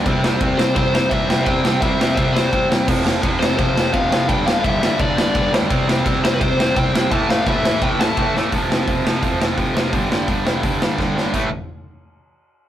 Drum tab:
CC |--------|--------|x-------|--------|
RD |x-x-x-x-|x-x-x-x-|--x-x-x-|x-x-x-x-|
HH |--------|--------|--------|--------|
SD |-o-o-o-o|-o-o-o-o|-o-o-o-o|-o-o-o-o|
BD |o-o-o-o-|o-o-o-o-|o-o-o-o-|o-o-o-o-|

CC |--------|--------|--------|--------|
RD |x-x-x-x-|x-x-x-x-|--------|--------|
HH |--------|--------|o-o-o-o-|o-o-o---|
SD |-o-o-o-o|-o-o-o-o|-o-o-o-o|-o-o-ooo|
BD |o-o-o-o-|o-o-o-o-|o-o-o-o-|o-o-o-o-|

CC |x-------|
RD |--------|
HH |--------|
SD |--------|
BD |o-------|